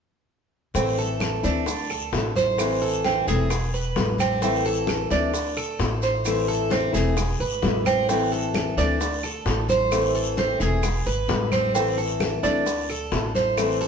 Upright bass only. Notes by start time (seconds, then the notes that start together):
0.75 A1
1.44 D2
2.13 A1
3.27 E1
3.96 A1
5.11 D2
5.79 A1
6.94 E1
7.40 G#1
7.63 A1
8.77 D2
9.46 A1
10.60 E1
11.06 G#1
11.29 A1
12.44 D2
13.12 A1